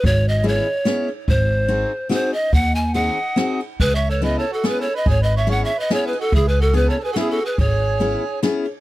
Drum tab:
RD |x-x-xx|x-x-xx|x-x-xx|x-x-xx|
SD |----o-|----o-|----o-|----o-|
BD |o-----|o-----|o-----|o-----|

RD |x-x-xx|x-x-xx|x-x-xx|
SD |----o-|----o-|----o-|
BD |o-----|o-----|o-----|